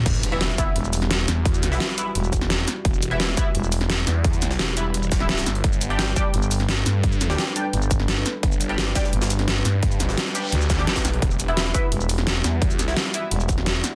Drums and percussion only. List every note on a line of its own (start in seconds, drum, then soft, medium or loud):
0.06 kick loud
0.06 closed hi-hat medium
0.06 crash loud
0.15 shaker soft
0.23 closed hi-hat medium
0.23 shaker medium
0.32 closed hi-hat soft
0.41 snare loud
0.41 closed hi-hat medium
0.50 snare soft
0.58 kick loud
0.58 closed hi-hat medium
0.58 closed hi-hat loud
0.58 shaker medium
0.76 closed hi-hat medium
0.84 shaker soft
0.93 closed hi-hat medium
0.93 open hi-hat medium
0.93 shaker medium
1.02 snare soft
1.02 closed hi-hat soft
1.11 snare loud
1.11 closed hi-hat medium
1.28 snare medium
1.28 closed hi-hat medium
1.28 closed hi-hat loud
1.28 shaker medium
1.45 kick loud
1.45 closed hi-hat medium
1.54 closed hi-hat soft
1.54 shaker soft
1.63 snare soft
1.63 closed hi-hat loud
1.63 closed hi-hat medium
1.63 shaker medium
1.72 snare medium
1.80 snare loud
1.80 closed hi-hat medium
1.89 snare soft
1.98 closed hi-hat medium
1.98 shaker medium
2.15 closed hi-hat medium
2.24 shaker soft
2.33 kick loud
2.33 closed hi-hat medium
2.33 shaker medium
2.41 snare soft
2.50 snare loud
2.50 closed hi-hat medium
2.68 snare medium
2.68 closed hi-hat medium
2.68 closed hi-hat loud
2.68 shaker medium
2.85 kick loud
2.85 closed hi-hat medium
2.94 shaker soft
3.02 closed hi-hat medium
3.02 shaker medium
3.11 closed hi-hat soft
3.20 snare loud
3.20 closed hi-hat medium
3.29 snare soft
3.37 kick loud
3.37 closed hi-hat medium
3.37 shaker medium
3.55 closed hi-hat medium
3.63 shaker soft
3.72 closed hi-hat medium
3.72 open hi-hat medium
3.72 shaker medium
3.81 snare soft
3.81 closed hi-hat soft
3.90 snare loud
3.90 closed hi-hat medium
4.07 snare medium
4.07 closed hi-hat loud
4.07 closed hi-hat medium
4.07 shaker medium
4.24 kick loud
4.24 closed hi-hat medium
4.33 closed hi-hat soft
4.33 shaker soft
4.42 snare soft
4.42 closed hi-hat medium
4.42 shaker medium
4.51 snare medium
4.59 snare loud
4.59 closed hi-hat medium
4.68 snare soft
4.77 closed hi-hat medium
4.77 shaker medium
4.94 closed hi-hat medium
5.03 shaker soft
5.12 kick loud
5.12 snare loud
5.12 closed hi-hat medium
5.12 shaker medium
5.20 snare soft
5.29 snare loud
5.29 closed hi-hat medium
5.38 snare loud
5.38 closed hi-hat medium
5.46 snare soft
5.46 closed hi-hat loud
5.46 shaker medium
5.55 closed hi-hat medium
5.64 kick loud
5.64 closed hi-hat medium
5.73 shaker soft
5.81 closed hi-hat medium
5.81 shaker medium
5.90 closed hi-hat soft
5.99 snare loud
5.99 closed hi-hat medium
6.08 snare soft
6.16 kick loud
6.16 closed hi-hat medium
6.16 shaker medium
6.34 closed hi-hat medium
6.34 closed hi-hat loud
6.42 shaker soft
6.51 closed hi-hat medium
6.51 open hi-hat medium
6.51 shaker medium
6.60 snare soft
6.60 closed hi-hat soft
6.69 snare loud
6.69 closed hi-hat medium
6.86 snare soft
6.86 closed hi-hat medium
6.86 shaker medium
7.04 kick loud
7.04 closed hi-hat medium
7.12 closed hi-hat soft
7.12 shaker soft
7.21 snare soft
7.21 closed hi-hat medium
7.21 shaker medium
7.30 snare medium
7.38 snare loud
7.38 closed hi-hat medium
7.47 snare soft
7.56 closed hi-hat medium
7.56 shaker medium
7.73 closed hi-hat medium
7.82 shaker soft
7.91 kick loud
7.91 closed hi-hat medium
7.91 shaker medium
8.00 snare soft
8.08 snare loud
8.08 closed hi-hat medium
8.26 snare soft
8.26 closed hi-hat medium
8.26 shaker medium
8.43 kick loud
8.43 closed hi-hat medium
8.52 shaker soft
8.61 closed hi-hat medium
8.61 closed hi-hat loud
8.61 shaker medium
8.69 closed hi-hat soft
8.78 snare loud
8.78 closed hi-hat medium
8.87 snare soft
8.95 kick loud
8.95 snare loud
8.95 closed hi-hat medium
8.95 shaker medium
9.04 snare soft
9.13 closed hi-hat medium
9.22 snare loud
9.22 closed hi-hat medium
9.22 shaker soft
9.30 snare soft
9.30 closed hi-hat medium
9.30 shaker medium
9.39 snare soft
9.39 closed hi-hat medium
9.48 snare loud
9.48 closed hi-hat medium
9.65 snare medium
9.65 closed hi-hat loud
9.65 closed hi-hat medium
9.65 shaker medium
9.83 kick loud
9.83 closed hi-hat medium
9.91 closed hi-hat soft
9.91 shaker soft
10.00 snare soft
10.00 closed hi-hat medium
10.00 closed hi-hat loud
10.00 shaker medium
10.09 snare medium
10.18 snare loud
10.18 closed hi-hat medium
10.26 snare soft
10.35 closed hi-hat medium
10.35 shaker medium
10.52 closed hi-hat medium
10.61 shaker soft
10.70 kick loud
10.70 snare loud
10.70 snare soft
10.70 closed hi-hat medium
10.70 shaker medium
10.79 snare soft
10.87 snare loud
10.87 closed hi-hat medium
10.96 kick medium
10.96 snare loud
10.96 closed hi-hat medium
10.96 shaker soft
11.05 snare soft
11.05 snare medium
11.05 closed hi-hat loud
11.05 shaker medium
11.14 closed hi-hat medium
11.22 kick loud
11.22 closed hi-hat medium
11.31 shaker soft
11.40 closed hi-hat loud
11.40 closed hi-hat medium
11.40 shaker medium
11.48 closed hi-hat soft
11.57 snare loud
11.57 closed hi-hat medium
11.66 snare soft
11.74 kick loud
11.74 closed hi-hat medium
11.74 shaker medium
11.92 closed hi-hat medium
11.92 closed hi-hat loud
12.01 shaker soft
12.09 closed hi-hat loud
12.09 open hi-hat medium
12.09 shaker medium
12.18 snare soft
12.18 closed hi-hat soft
12.27 snare loud
12.27 closed hi-hat medium
12.44 snare medium
12.44 closed hi-hat loud
12.44 closed hi-hat medium
12.44 shaker medium
12.62 kick loud
12.62 closed hi-hat medium
12.70 closed hi-hat soft
12.70 shaker soft
12.79 snare soft
12.79 closed hi-hat medium
12.79 closed hi-hat loud
12.79 shaker medium
12.88 snare medium
12.97 snare loud
12.97 closed hi-hat medium
13.05 snare soft
13.14 closed hi-hat medium
13.14 shaker medium
13.31 closed hi-hat loud
13.31 closed hi-hat medium
13.40 shaker soft
13.49 kick loud
13.49 closed hi-hat medium
13.49 shaker medium
13.58 snare soft
13.66 snare loud
13.66 closed hi-hat medium
13.84 snare medium
13.84 closed hi-hat medium
13.84 closed hi-hat loud
13.84 shaker medium